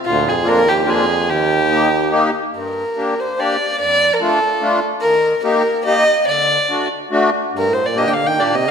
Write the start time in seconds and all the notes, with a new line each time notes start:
0.05 D2 A#2 F4
0.28 F2 G#4
0.43 F2 A#3 D4 F4
0.48 A#4
0.66 D#2 G4
0.85 F2 A#3 D4 F4
0.90 G#4
1.29 D#2 D#3 G4
1.70 A#3 D#4 G4
2.11 A#3 D#4 G4
2.54 G2 A#4
2.96 A#3 D4 G4
3.20 C5
3.38 A#3 D4 G4 D5
3.80 F2 D5
4.13 A#4
4.20 A3 D4 F4 A4
4.61 A3 D4 F4
5.01 D#3 A#4
5.44 A#3 D#4 G4 A#4
5.85 A#3 D#4 G4 D#5
6.27 D3 D5
6.69 A3 D4 F#4
7.11 A3 D4 F#4
7.53 G2 A#4
7.69 A2 C5
7.83 A#2 D5
7.95 A#2 A#3 D4 G4 D#5
8.06 D#3 G5
8.10 D3 F5
8.27 D#3 G5
8.37 A#3 D4 G4 D5
8.41 A#2
8.55 C3 D#5
8.67 D3